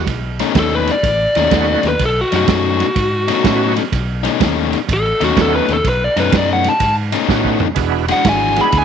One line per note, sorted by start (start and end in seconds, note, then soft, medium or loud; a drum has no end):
0.07 0.41 B1 loud
0.07 kick medium
0.07 snare soft
0.07 ride medium
0.39 0.55 B2 medium
0.39 0.55 A3 medium
0.39 0.56 C#4 medium
0.39 0.56 D#4 medium
0.39 snare soft
0.39 ride medium
0.55 0.89 D#2 medium
0.55 0.92 B2 medium
0.55 0.93 A3 medium
0.55 0.93 C#4 medium
0.55 0.93 D#4 medium
0.55 kick medium
0.55 snare loud
0.55 ride medium
0.59 0.75 A4 medium
0.75 0.89 B4 medium
0.87 1.83 D5 medium
0.87 snare soft
0.87 ride medium
1.03 1.25 A1 medium
1.03 kick loud
1.03 snare soft
1.03 ride medium
1.35 1.47 D#2 medium
1.35 1.51 B2 medium
1.35 1.51 A3 medium
1.35 1.52 C#4 medium
1.35 1.52 D#4 medium
1.35 snare soft
1.35 ride medium
1.51 1.74 D#2 medium
1.51 1.89 B2 medium
1.51 1.80 A3 medium
1.51 1.89 A3 medium
1.51 1.81 B3 medium
1.51 1.81 C#4 medium
1.51 1.89 C#4 medium
1.51 1.81 D#4 medium
1.51 1.89 D#4 medium
1.51 1.81 F#4 medium
1.51 kick medium
1.51 snare loud
1.51 ride medium
1.83 1.95 D#2 medium
1.83 snare soft
1.83 ride medium
1.88 2.02 B4 medium
1.99 2.22 B1 medium
1.99 kick medium
1.99 snare soft
1.99 ride medium
2.06 2.18 A4 loud
2.21 2.34 F#4 medium
2.32 2.44 F#2 medium
2.32 2.48 B2 medium
2.32 2.48 A3 medium
2.32 2.49 C#4 medium
2.32 2.49 D#4 medium
2.32 snare soft
2.32 ride medium
2.36 3.75 F#4 medium
2.48 2.81 F#2 medium
2.48 2.86 B2 medium
2.48 2.86 A3 medium
2.48 2.86 C#4 medium
2.48 2.86 D#4 medium
2.48 kick medium
2.48 snare loud
2.48 ride medium
2.80 snare soft
2.80 ride medium
2.96 3.30 G#2 medium
2.96 kick medium
2.96 snare soft
2.96 ride medium
3.28 3.43 B2 medium
3.28 3.43 A3 medium
3.28 3.44 C#4 medium
3.28 3.44 D#4 medium
3.28 snare soft
3.28 ride medium
3.44 3.78 A2 medium
3.44 3.81 B2 medium
3.44 3.73 A3 medium
3.44 3.81 A3 medium
3.44 3.73 B3 medium
3.44 3.73 C#4 medium
3.44 3.82 C#4 medium
3.44 3.73 D#4 medium
3.44 3.82 D#4 medium
3.44 3.74 F#4 medium
3.44 kick medium
3.44 snare loud
3.44 ride medium
3.77 snare soft
3.77 ride medium
3.92 4.26 B1 medium
3.92 kick medium
3.92 snare soft
3.92 ride medium
4.23 4.39 B2 medium
4.23 4.39 A3 medium
4.23 4.40 C#4 medium
4.23 4.40 D#4 medium
4.23 snare soft
4.23 ride medium
4.40 4.74 D#2 medium
4.40 4.77 B2 medium
4.40 4.77 A3 medium
4.40 4.78 C#4 medium
4.40 4.78 D#4 medium
4.40 kick medium
4.40 snare loud
4.40 ride medium
4.73 snare soft
4.73 ride medium
4.89 5.11 A1 medium
4.89 kick loud
4.89 snare soft
4.89 ride medium
4.93 5.22 A4 loud
5.21 5.32 D#2 medium
5.21 5.36 B2 medium
5.21 5.36 A3 medium
5.21 5.37 C#4 medium
5.21 5.37 D#4 medium
5.21 5.38 F#4 medium
5.21 snare soft
5.21 ride medium
5.36 5.59 D#2 medium
5.36 5.74 B2 medium
5.36 5.66 A3 medium
5.36 5.74 A3 medium
5.36 5.66 B3 medium
5.36 5.66 C#4 medium
5.36 5.74 C#4 medium
5.36 5.66 D#4 medium
5.36 5.74 D#4 medium
5.36 5.66 F#4 medium
5.36 kick medium
5.36 snare loud
5.36 ride medium
5.42 5.55 A4 medium
5.56 5.70 B4 medium
5.68 5.80 D#2 medium
5.68 snare soft
5.68 ride medium
5.73 5.87 A4 medium
5.84 6.07 B1 loud
5.84 kick medium
5.84 snare soft
5.84 ride medium
5.89 6.03 B4 loud
6.04 6.18 D5 medium
6.16 6.28 F#2 medium
6.16 6.31 B2 medium
6.16 6.31 A3 medium
6.16 6.32 C#4 medium
6.16 6.33 D#4 medium
6.16 6.34 B4 medium
6.16 snare soft
6.16 ride medium
6.32 6.66 F#2 medium
6.32 6.70 B2 medium
6.32 6.70 A3 medium
6.32 6.70 C#4 medium
6.32 6.70 D#4 medium
6.32 kick medium
6.32 snare loud
6.32 ride medium
6.37 6.51 D5 medium
6.53 6.67 F#5 medium
6.64 snare soft
6.64 ride medium
6.70 6.94 A5 medium
6.80 7.14 G#2 medium
6.80 kick medium
6.80 snare soft
6.80 ride medium
7.12 7.27 B2 medium
7.12 7.28 A3 medium
7.12 7.29 C#4 medium
7.12 7.29 D#4 medium
7.12 snare soft
7.12 ride medium
7.28 7.63 A2 medium
7.28 7.66 B2 medium
7.28 7.58 A3 medium
7.28 7.66 A3 medium
7.28 7.58 B3 medium
7.28 7.58 C#4 medium
7.28 7.67 C#4 medium
7.28 7.58 D#4 medium
7.28 7.67 D#4 medium
7.28 7.58 F#4 medium
7.28 kick medium
7.28 snare medium
7.45 kick medium
7.60 floor tom loud
7.75 8.10 E1 medium
7.75 8.05 G#3 medium
7.75 8.06 B3 medium
7.75 8.06 D4 medium
7.75 8.06 E4 medium
7.75 8.06 F#4 medium
7.75 kick medium
7.75 snare soft
7.75 ride medium
8.08 8.24 E3 medium
8.08 8.25 G#3 medium
8.08 8.26 D4 medium
8.08 8.26 F#4 medium
8.08 8.27 F#5 medium
8.08 snare soft
8.08 ride medium
8.25 8.59 G#1 medium
8.25 8.63 E3 medium
8.25 8.63 G#3 medium
8.25 8.63 D4 medium
8.25 8.63 F#4 medium
8.25 kick medium
8.25 snare loud
8.25 ride medium
8.29 8.59 G#5 medium
8.56 8.85 G#3 medium
8.56 8.85 B3 medium
8.56 8.85 D4 medium
8.56 8.85 E4 medium
8.56 8.85 G#4 medium
8.56 snare soft
8.56 ride medium
8.61 8.76 B5 medium
8.72 8.85 D2 medium
8.72 kick medium
8.72 snare soft
8.72 ride medium
8.78 8.85 G#5 loud